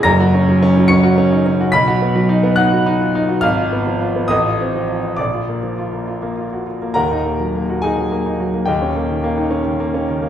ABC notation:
X:1
M:6/8
L:1/16
Q:3/8=70
K:Ebm
V:1 name="Grand piano"
[bb']6 [d'd'']6 | [=b=b']6 [^f^f']2 z4 | [ff']6 [ee']6 | [=d=d']8- [dd']2 z2 |
[Bgb]6 [Aa]6 | [=Ge=g]8- [Geg]2 z2 |]
V:2 name="Grand piano"
[G,,,G,,] G D G, D G, D G D E D G | =B,,, ^F =B, ^F, ^D B, D F D =F D ^F | A,,, F C F, F C =A,,, F =C F, F C | B,,, F B, F, F B, F B, F G F B, |
[E,,,E,,] E B, G, B, G E G, B, E G, B, | [E,,,E,,] D B, E, B, E D E, B, D E, B, |]